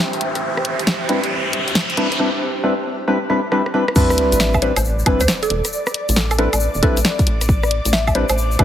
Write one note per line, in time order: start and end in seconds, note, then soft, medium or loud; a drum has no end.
0.00 1.96 G4 medium
0.00 1.97 C5 medium
0.00 2.19 E5 medium
0.00 2.19 G5 medium
0.00 riser medium
0.13 closed hi-hat soft
0.21 0.74 A1 medium
0.21 closed hi-hat medium
0.35 cross-stick soft
0.35 closed hi-hat medium
0.57 cross-stick medium
0.65 closed hi-hat loud
0.79 1.18 A1 loud
0.79 closed hi-hat medium
0.87 snare loud
1.09 1.19 G3 medium
1.09 1.19 C4 medium
1.09 1.19 D4 medium
1.09 1.19 E4 medium
1.09 1.19 B4 medium
1.09 closed hi-hat medium
1.24 1.50 A1 medium
1.24 closed hi-hat medium
1.53 1.64 G1 medium
1.53 closed hi-hat loud
1.68 1.73 D2 loud
1.68 closed hi-hat medium
1.75 snare loud
1.90 closed hi-hat soft
1.97 2.08 D2 loud
1.97 2.08 G3 medium
1.97 2.08 C4 medium
1.97 2.08 D4 medium
1.97 2.08 E4 medium
1.97 2.08 B4 medium
1.97 closed hi-hat medium
2.12 cross-stick soft
2.12 closed hi-hat medium
2.19 2.30 G3 medium
2.19 2.30 C4 medium
2.19 2.30 D4 medium
2.19 2.30 E4 medium
2.19 2.30 B4 medium
2.63 2.74 G3 medium
2.63 2.74 C4 medium
2.63 2.74 D4 medium
2.63 2.74 E4 medium
2.63 2.74 B4 medium
3.08 3.18 G3 medium
3.08 3.18 C4 medium
3.08 3.18 D4 medium
3.08 3.18 E4 medium
3.08 3.18 B4 medium
3.30 3.40 G3 medium
3.30 3.40 C4 medium
3.30 3.40 D4 medium
3.30 3.40 E4 medium
3.30 3.40 B4 loud
3.52 3.62 G3 medium
3.52 3.62 C4 medium
3.52 3.62 D4 medium
3.52 3.62 E4 medium
3.52 3.62 B4 loud
3.52 cross-stick medium
3.66 cross-stick medium
3.74 3.84 G3 medium
3.74 3.84 C4 medium
3.74 3.84 D4 medium
3.74 3.84 E4 medium
3.74 3.84 B4 loud
3.88 cross-stick medium
3.96 4.59 G3 loud
3.96 4.59 C4 loud
3.96 4.59 D4 medium
3.96 4.59 E4 medium
3.96 4.59 B4 loud
3.96 8.64 D5 medium
3.96 kick loud
3.96 crash loud
3.96 sub drop medium
3.96 shaker medium
4.10 cross-stick medium
4.10 shaker soft
4.18 closed hi-hat loud
4.32 4.71 A1 loud
4.32 closed hi-hat medium
4.32 shaker medium
4.40 4.49 E5 medium
4.40 snare loud
4.40 shaker medium
4.54 4.59 E5 medium
4.54 kick medium
4.54 high woodblock medium
4.54 shaker soft
4.62 4.72 G3 medium
4.62 4.72 C4 medium
4.62 4.72 D4 medium
4.62 4.72 E4 medium
4.62 4.72 B4 medium
4.62 4.71 C5 medium
4.62 closed hi-hat loud
4.76 5.03 A1 medium
4.76 4.82 C5 medium
4.76 closed hi-hat medium
4.76 high woodblock medium
4.76 shaker medium
4.84 shaker medium
4.99 shaker soft
5.06 5.17 G1 medium
5.06 5.22 G3 loud
5.06 5.22 C4 medium
5.06 5.22 D4 medium
5.06 5.22 E4 medium
5.06 5.22 B4 loud
5.06 kick loud
5.06 closed hi-hat loud
5.06 high woodblock medium
5.20 5.26 D2 medium
5.20 5.31 C5 medium
5.20 closed hi-hat medium
5.20 shaker medium
5.28 snare loud
5.28 shaker medium
5.43 5.53 A4 medium
5.43 closed hi-hat medium
5.43 shaker soft
5.50 5.61 E1 loud
5.50 closed hi-hat loud
5.65 cross-stick soft
5.65 closed hi-hat medium
5.65 shaker medium
5.73 shaker medium
5.86 cross-stick medium
5.86 shaker soft
5.94 closed hi-hat loud
6.09 6.47 A1 loud
6.09 closed hi-hat medium
6.09 shaker medium
6.16 6.26 A4 medium
6.16 snare loud
6.16 shaker medium
6.31 6.36 A4 medium
6.31 closed hi-hat soft
6.31 high woodblock medium
6.31 shaker soft
6.38 6.49 G3 medium
6.38 6.49 C4 medium
6.38 6.49 D4 medium
6.38 6.49 E4 medium
6.38 6.54 A4 medium
6.38 6.49 B4 medium
6.38 closed hi-hat medium
6.53 6.68 A1 medium
6.53 closed hi-hat medium
6.53 high woodblock medium
6.53 shaker medium
6.60 shaker medium
6.74 6.81 E1 medium
6.74 shaker soft
6.83 6.98 G3 loud
6.83 6.98 C4 medium
6.83 6.98 D4 medium
6.83 6.98 E4 medium
6.83 7.19 A4 medium
6.83 6.98 B4 loud
6.83 kick loud
6.83 closed hi-hat loud
6.97 7.03 A1 medium
6.97 closed hi-hat medium
6.97 shaker medium
7.04 snare loud
7.04 shaker medium
7.19 kick loud
7.19 closed hi-hat medium
7.19 shaker soft
7.27 7.80 A1 medium
7.27 closed hi-hat medium
7.41 cross-stick soft
7.41 closed hi-hat medium
7.41 shaker medium
7.49 kick loud
7.49 shaker medium
7.63 cross-stick medium
7.63 shaker soft
7.71 closed hi-hat loud
7.85 8.24 A1 loud
7.85 closed hi-hat medium
7.85 shaker medium
7.93 8.02 E5 medium
7.93 snare loud
8.07 8.12 E5 medium
8.07 kick medium
8.07 high woodblock medium
8.07 shaker soft
8.15 8.25 G3 medium
8.15 8.25 C4 medium
8.15 8.25 D4 medium
8.15 8.25 E4 medium
8.15 8.25 B4 medium
8.15 8.24 C5 medium
8.15 closed hi-hat medium
8.29 8.56 A1 medium
8.29 8.34 C5 medium
8.29 closed hi-hat medium
8.29 high woodblock medium
8.29 shaker medium
8.38 shaker medium
8.51 shaker soft
8.59 8.64 G1 medium
8.59 8.64 G3 loud
8.59 8.64 C4 medium
8.59 8.64 D4 medium
8.59 8.64 E4 medium
8.59 8.64 B4 loud
8.59 kick loud
8.59 closed hi-hat loud
8.59 high woodblock medium